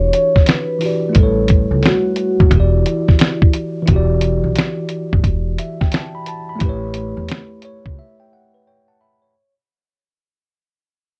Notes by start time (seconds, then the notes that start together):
Already playing: E3 D4 E4 F#4 G4 C#5
0.13 closed hi-hat
0.36 kick, snare
0.47 B4, finger snap, snare, closed hi-hat
0.79 E3 E4 F#4, open hi-hat
0.84 G4 D5
1.09 A3 E4
1.15 A1 G3 A4, kick, closed hi-hat
1.20 B4 C#5
1.48 kick, closed hi-hat
1.71 C#2
1.83 F#4, finger snap, snare, closed hi-hat
2.16 closed hi-hat
2.40 A1, kick
2.46 E3 E4
2.51 E1 E4 F#4, kick, closed hi-hat
2.56 G4 D5
2.86 closed hi-hat
3.08 kick, snare
3.19 finger snap, snare, closed hi-hat
3.42 kick
3.53 closed hi-hat
3.82 E3 E4
3.87 E1 F#4, kick, closed hi-hat
3.93 G4 D5
4.21 closed hi-hat
4.44 B1
4.56 finger snap, snare, closed hi-hat
4.89 closed hi-hat
5.13 G1, kick
5.24 E1, kick, closed hi-hat
5.58 E5, closed hi-hat
5.81 G5, kick, snare
5.92 A5, finger snap, snare, closed hi-hat
6.15 B5
6.26 A5, closed hi-hat
6.49 B5
6.56 A3 E4
6.60 A1 G4, kick, closed hi-hat
6.66 B4 C#5
6.94 closed hi-hat
7.17 E2
7.28 finger snap, snare, closed hi-hat
7.62 C#5, closed hi-hat
7.86 C#2, kick
7.99 E5
8.20 G5
8.33 F#5
8.54 B4
8.67 C#5 G5
8.88 F#5 A5
9.01 E5 B5
9.22 C#5